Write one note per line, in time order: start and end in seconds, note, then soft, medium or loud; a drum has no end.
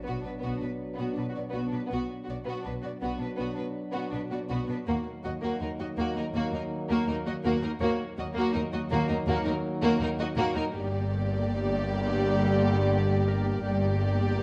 0.00 1.87 B2 soft
0.00 1.87 F#3 soft
0.00 1.88 B3 soft
0.00 0.22 B3 soft
0.00 1.88 D4 soft
0.00 2.83 E5 soft
0.00 impact soft
0.06 0.15 B1 soft
0.06 0.14 B2 soft
0.06 0.24 B3 soft
0.06 0.24 F#4 soft
0.21 0.29 D4 soft
0.21 0.33 B4 soft
0.26 0.33 B2 soft
0.26 0.33 B3 soft
0.39 0.58 B3 soft
0.39 0.60 F#4 soft
0.44 0.51 B1 soft
0.44 0.51 B2 soft
0.44 0.61 B3 soft
0.57 0.65 D4 soft
0.62 0.69 B2 soft
0.62 0.70 B3 soft
0.62 0.70 B4 soft
0.94 1.13 B3 soft
0.99 1.07 B2 soft
0.99 1.16 B3 soft
0.99 1.16 F#4 soft
1.13 1.24 B1 soft
1.13 1.21 D4 soft
1.17 1.25 B2 soft
1.17 1.25 B3 soft
1.17 1.26 B4 soft
1.29 1.37 F#4 soft
1.36 1.43 B2 soft
1.36 1.45 B3 soft
1.36 1.43 D5 soft
1.49 1.69 B3 soft
1.53 1.61 B1 soft
1.53 1.61 B2 soft
1.53 1.72 B3 soft
1.53 1.71 F#4 soft
1.67 1.75 D4 soft
1.73 1.80 B2 soft
1.73 1.81 B3 soft
1.73 1.81 B4 soft
1.87 4.83 F#3 soft
1.87 2.06 B3 soft
1.91 1.99 B1 soft
1.91 4.84 B2 soft
1.91 1.99 B2 soft
1.91 4.84 B3 soft
1.91 2.09 B3 soft
1.91 4.84 D4 soft
1.91 2.10 F#4 soft
2.25 2.36 B1 soft
2.25 2.36 B2 soft
2.25 2.33 F#4 soft
2.29 2.36 B3 soft
2.29 2.37 D5 soft
2.45 2.54 B2 soft
2.45 2.63 B3 soft
2.45 2.64 B3 soft
2.45 2.65 F#4 soft
2.62 2.73 B2 soft
2.62 2.73 B3 soft
2.62 2.70 D4 soft
2.62 2.73 B4 soft
2.66 2.73 B1 soft
2.82 2.92 B2 soft
2.82 2.91 B3 soft
2.82 2.90 F#4 soft
2.82 2.91 D5 soft
3.01 3.10 B1 soft
3.01 3.10 B2 soft
3.01 3.19 B3 soft
3.01 3.18 B3 soft
3.01 3.20 F#4 soft
3.19 3.28 B2 soft
3.19 3.27 B3 soft
3.19 3.27 D4 soft
3.19 3.29 B4 soft
3.36 3.47 B1 soft
3.36 3.47 B2 soft
3.36 3.55 B3 soft
3.36 3.56 F#4 soft
3.55 3.66 B2 soft
3.55 3.64 B3 soft
3.55 3.63 D4 soft
3.55 3.65 B4 soft
3.92 4.02 B2 soft
3.92 4.11 B3 medium
3.92 4.09 B3 medium
3.92 4.11 F#4 soft
4.10 4.21 B1 soft
4.10 4.21 B2 soft
4.10 4.19 B3 soft
4.10 4.18 D4 soft
4.10 4.20 B4 soft
4.31 4.39 B2 soft
4.31 4.38 B3 soft
4.31 4.38 F#4 soft
4.31 4.39 D5 soft
4.49 4.58 B1 soft
4.49 4.57 B2 medium
4.49 4.67 B3 soft
4.49 4.68 B3 soft
4.49 4.67 F#4 medium
4.68 4.76 B2 soft
4.68 4.76 B3 soft
4.68 4.76 D4 soft
4.68 4.77 B4 soft
4.87 4.94 D#2 medium
4.87 4.95 D#2 medium
4.87 7.65 D#3 medium
4.87 7.65 F#3 soft
4.87 5.04 A#3 soft
4.87 5.05 A#3 soft
4.87 7.64 A#3 medium
4.87 7.64 D#4 medium
4.87 5.05 F#4 soft
5.24 5.31 D#2 soft
5.24 5.32 D#2 soft
5.24 5.31 A#3 soft
5.24 5.32 F#4 soft
5.24 5.32 D#5 soft
5.41 5.50 D#2 medium
5.41 5.59 A#3 medium
5.41 5.60 F#4 soft
5.60 5.68 D#2 soft
5.60 5.69 D#2 soft
5.60 5.68 A#3 soft
5.60 5.68 D#4 soft
5.60 5.69 A#4 soft
5.78 5.86 D#2 soft
5.78 5.86 A#3 soft
5.78 5.87 F#4 soft
5.78 5.87 D#5 soft
5.96 6.04 D#2 medium
5.96 6.05 D#2 medium
5.96 6.14 A#3 medium
5.96 6.15 F#4 medium
6.15 6.23 D#2 soft
6.15 6.23 A#3 soft
6.15 6.24 D#4 soft
6.15 6.25 A#4 soft
6.33 6.41 D#2 medium
6.33 6.42 D#2 medium
6.33 6.51 A#3 medium
6.33 6.53 A#3 medium
6.33 6.52 F#4 medium
6.52 6.60 D#2 soft
6.52 6.60 A#3 soft
6.52 6.61 D#4 soft
6.52 6.62 A#4 soft
6.89 6.97 D#2 medium
6.89 7.06 A#3 medium
6.89 7.08 F#4 medium
7.07 7.15 D#2 soft
7.07 7.14 A#3 medium
7.07 7.16 D#4 soft
7.07 7.15 A#4 soft
7.26 7.33 D#2 soft
7.26 7.34 A#3 medium
7.26 7.34 F#4 medium
7.26 7.34 D#5 soft
7.44 7.52 D#2 medium
7.44 7.61 A#3 medium
7.44 7.62 F#4 medium
7.62 7.70 D#2 soft
7.62 7.71 A#3 medium
7.62 7.70 D#4 soft
7.62 7.70 A#4 medium
7.80 7.88 D#2 medium
7.80 10.70 D#3 medium
7.80 10.70 F#3 medium
7.80 7.98 A#3 medium
7.80 10.70 A#3 medium
7.80 7.99 A#3 medium
7.80 10.70 D#4 medium
7.80 7.99 F#4 medium
7.80 10.76 C#5 medium
8.17 8.25 D#2 soft
8.17 8.25 D#2 medium
8.17 8.25 A#3 soft
8.17 8.25 F#4 soft
8.17 8.26 D#5 medium
8.34 8.44 D#2 medium
8.34 8.52 A#3 medium
8.34 8.54 F#4 medium
8.53 8.62 D#2 medium
8.53 8.61 A#3 medium
8.53 8.60 D#4 soft
8.53 8.61 A#4 medium
8.73 8.80 D#2 medium
8.73 8.81 A#3 soft
8.73 8.80 F#4 medium
8.73 8.80 D#5 medium
8.90 8.98 D#2 medium
8.90 9.08 A#3 medium
8.90 9.09 A#3 medium
8.90 9.09 F#4 medium
9.09 9.18 D#2 medium
9.09 9.17 A#3 medium
9.09 9.16 D#4 soft
9.09 9.16 A#4 soft
9.27 9.34 D#2 medium
9.27 9.36 D#2 medium
9.27 9.45 A#3 medium
9.27 9.44 F#4 medium
9.44 9.54 D#2 medium
9.44 9.54 A#3 medium
9.44 9.52 D#4 medium
9.44 9.52 A#4 medium
9.82 9.90 D#2 medium
9.82 9.99 A#3 medium
9.82 10.00 A#3 medium
9.82 9.99 F#4 medium
10.00 10.07 D#2 medium
10.00 10.08 D#2 medium
10.00 10.10 A#3 medium
10.00 10.08 D#4 medium
10.00 10.09 A#4 medium
10.19 10.26 D#2 medium
10.19 10.26 A#3 medium
10.19 10.27 F#4 medium
10.19 10.27 D#5 medium
10.36 10.44 D#2 medium
10.36 10.54 A#3 medium
10.36 10.54 F#4 medium
10.55 10.62 D#2 medium
10.55 10.63 A#3 medium
10.55 10.63 D#4 medium
10.55 10.63 A#4 medium
10.72 13.61 G1 medium
10.72 13.61 G2 medium
10.72 13.62 D3 medium
10.72 13.62 G3 medium
10.72 13.60 A#3 medium
10.72 13.61 A#3 medium
10.72 13.60 G4 medium
10.72 13.61 G4 medium
10.72 13.62 D5 medium
13.28 14.43 A#4 medium
13.64 14.43 G1 medium
13.64 14.43 G2 medium
13.64 14.43 D3 medium
13.64 14.43 G3 medium
13.64 14.43 A#3 medium
13.64 14.43 G4 medium
13.64 14.43 D5 medium